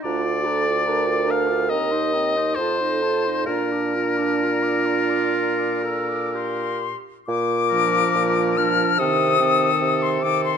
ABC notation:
X:1
M:4/4
L:1/16
Q:1/4=70
K:Bb
V:1 name="Flute"
b d' b d' b d' b d' b c' b c' a c' a c' | b d' b d' b d' b d' b d' b d' c'4 | d'6 f'2 e'4- e' c' d' c' |]
V:2 name="Oboe"
d6 f2 e4 c4 | B12- B2 z2 | z2 B4 B2 A2 A4 A2 |]
V:3 name="Clarinet"
D F D F D F D F C E C E F E F E | F D F D F6 A2 G4 | z2 D4 D2 C2 C4 C2 |]
V:4 name="French horn"
F2 A2 B6 z2 A4 | D12- D2 z2 | z2 F,4 F,2 E,2 E,4 E,2 |]
V:5 name="Bassoon" clef=bass
D,,8 E,,4 F,,4 | B,,12- B,,2 z2 | B,,4 B,,4 C,4 C,4 |]